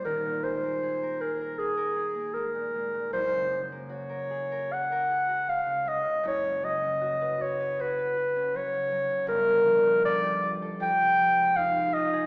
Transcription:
Already playing: A#3
0.04 D#1 D#2 A#4
0.25 A#2
0.44 G#3 C5
0.63 A#3
0.83 G#4
1.03 A#4
1.21 G#4 A#4
1.41 A#4
1.59 G#4
1.77 A#4
1.96 G#4
2.15 A#3
2.34 G#3 A#4
2.55 A#2
2.75 G#3
2.94 A#2
3.13 F#1 F#2 C5
3.32 C#3
3.51 G#3
3.72 A#3
3.89 F#4 C#5
4.09 A#4
4.30 G#4
4.52 A#4
4.73 G#4 F#5
4.92 A#4
5.11 G#4
5.28 F#4
5.47 G#3 F5
5.66 C#3
5.85 G#3 D#5
6.05 C#3
6.23 F#1 F#2 C#5
6.44 C#3
6.63 F#3 D#5
6.83 C#4
7.01 F#4
7.21 B4
7.41 F#4 C#5
7.60 B4
7.79 F#4 B4
7.99 B4
8.17 F#4
8.36 C#4
8.54 F#3 C#5
8.73 C#3
8.91 F#3
9.10 C#3
9.27 G1 G2 A#4
9.48 D3
9.66 F3
9.84 A3
10.04 D4 D5
10.24 G4
10.42 F4
10.62 A4
10.80 F2 G5
11.01 C3
11.19 F3
11.39 G#3
11.56 D#4 F5
11.76 G4
11.93 F4 D#5
12.13 G#4

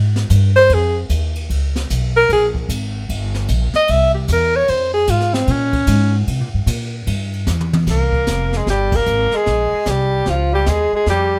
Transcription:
Already playing: G#2
0.16 snare
0.30 G2, hi-hat pedal, ride
0.56 C5
0.69 F2, ride
0.74 G#4
1.09 D#2, hi-hat pedal, ride
1.35 ride
1.50 C#2, ride
1.76 snare
1.90 B1, hi-hat pedal, ride
2.16 A#4
2.29 A#1 G#4, ride
2.55 kick
2.69 G#1, hi-hat pedal, ride
3.09 G1, ride
3.34 snare
3.48 A#1, hi-hat pedal, ride
3.74 D#5, muted upright bass stroke, snare
3.88 C2 E5, ride
4.15 G4
4.28 E2, hi-hat pedal, ride
4.32 A#4
4.56 C#5
4.68 F2 C5, ride
4.94 G#4
5.07 G#2 F4, hi-hat pedal, ride
5.21 snare
5.34 C4, snare
5.47 A#2 C#4, ride
5.73 kick, ride
5.87 G#2, hi-hat pedal, ride
6.27 C3, ride
6.40 A#2
6.54 G2
6.66 A#2, hi-hat pedal, ride
7.07 G2, ride
7.33 ride
7.47 E2, snare, hi-hat pedal
7.61 mid tom
7.73 mid tom
7.87 C2 A#3 A#4, brush sweep, kick, snare, crash
8.12 kick
8.27 F1, snare, hi-hat pedal
8.53 G#4, snare
8.57 G#3
8.67 G1 G3 G4, brush sweep, snare
8.92 A#3 A#4, kick, crash
9.06 G#1, hi-hat pedal
9.31 G#3, muted upright bass stroke, snare
9.36 G#4
9.46 A#1, brush sweep, snare
9.72 muted upright bass stroke
9.86 C2 G3, snare, hi-hat pedal
9.90 G4
10.26 C#2 F3, brush sweep, snare
10.30 F4
10.52 G3 G4
10.66 D#2 G#3 G#4, snare, hi-hat pedal
10.93 G#3 G#4, muted upright bass stroke
11.06 F2 G3 G4, brush sweep, snare

